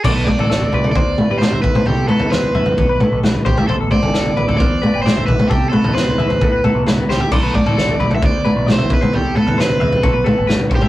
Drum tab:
CC |x---------------|----------------|----------------|----------------|
SD |----o-------o---|----o-------o---|----o-------o---|----o-------o-o-|
T2 |--o-------o-o--o|--o-------o-o--o|--o-------o-o--o|--o-------o-o---|
FT |o--o-oooo----ooo|o--o-oooo-o--ooo|o--o-oooo----ooo|o--o-oooo-o--o-o|
BD |o-o-----o-----o-|--------o-----o-|--o-----o-----o-|o-------o-------|

CC |x---------------|----------------|
SD |----o-------o---|----o-------o---|
T2 |--o-------o-o--o|--o-------o-o--o|
FT |o--o-oooo----ooo|o--o-oooo-o--ooo|
BD |o-o-----o-----o-|--------o-----o-|